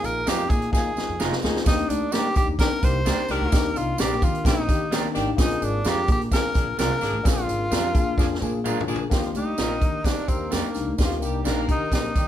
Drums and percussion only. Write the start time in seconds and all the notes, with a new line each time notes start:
0.04 closed hi-hat, tambourine
0.27 snare, closed hi-hat, tambourine
0.50 kick, closed hi-hat, tambourine
0.62 closed hi-hat
0.73 kick, snare, tambourine
0.97 snare, tambourine
1.20 snare, tambourine
1.32 snare
1.42 snare, tambourine
1.56 snare
1.66 kick, snare, closed hi-hat, tambourine
1.79 closed hi-hat
1.90 closed hi-hat, tambourine
2.12 snare, closed hi-hat, tambourine
2.35 kick, closed hi-hat, tambourine
2.59 kick, snare, closed hi-hat, tambourine
2.83 kick, closed hi-hat, tambourine
3.06 snare, closed hi-hat, tambourine
3.28 closed hi-hat, tambourine
3.52 kick, snare, closed hi-hat, tambourine
3.76 closed hi-hat, tambourine
3.98 snare, closed hi-hat, tambourine
4.22 kick, closed hi-hat, tambourine
4.35 closed hi-hat
4.45 kick, snare, closed hi-hat, tambourine
4.69 kick, closed hi-hat, tambourine
4.92 snare, closed hi-hat, tambourine
5.15 snare, closed hi-hat, tambourine
5.38 kick, snare, closed hi-hat, tambourine
5.51 closed hi-hat
5.62 closed hi-hat, tambourine
5.85 snare, closed hi-hat, tambourine
6.08 kick, closed hi-hat, tambourine
6.21 closed hi-hat
6.31 kick, snare, closed hi-hat, tambourine
6.54 kick, closed hi-hat, tambourine
6.79 snare, closed hi-hat, tambourine
7.01 snare, closed hi-hat, tambourine
7.25 kick, snare, closed hi-hat, tambourine
7.37 closed hi-hat
7.49 closed hi-hat, tambourine
7.72 snare, closed hi-hat, tambourine
7.95 kick, closed hi-hat, tambourine
8.18 kick, snare, tambourine
8.35 snare
8.42 tambourine
8.65 mid tom, tambourine
8.80 floor tom
8.88 tambourine
8.96 floor tom
9.11 kick, snare, closed hi-hat, tambourine
9.23 closed hi-hat
9.35 closed hi-hat, tambourine
9.58 snare, closed hi-hat, tambourine
9.81 kick, closed hi-hat, tambourine
10.04 kick, snare, closed hi-hat, tambourine
10.28 kick, closed hi-hat, tambourine
10.52 snare, closed hi-hat, tambourine
10.74 snare, closed hi-hat, tambourine
10.98 kick, snare, closed hi-hat, tambourine
11.12 closed hi-hat
11.22 closed hi-hat, tambourine
11.45 snare, closed hi-hat, tambourine
11.69 kick, closed hi-hat, tambourine
11.92 kick, snare, closed hi-hat, tambourine
12.16 kick, closed hi-hat, tambourine